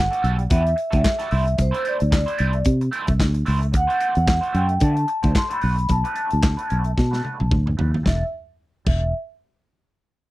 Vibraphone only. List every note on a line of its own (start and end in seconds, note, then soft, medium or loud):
0.00 0.21 F#5 loud
0.51 1.62 E5 loud
1.61 1.88 C5 loud
1.88 2.64 D5 medium
3.77 4.01 F#5 loud
4.02 4.57 F#5 medium
4.55 4.80 G5 medium
4.83 5.38 A5 medium
5.37 5.52 C6 loud
5.52 5.92 B5 loud
5.91 7.48 A5 medium
8.07 8.23 E5 medium
8.87 9.12 E5 medium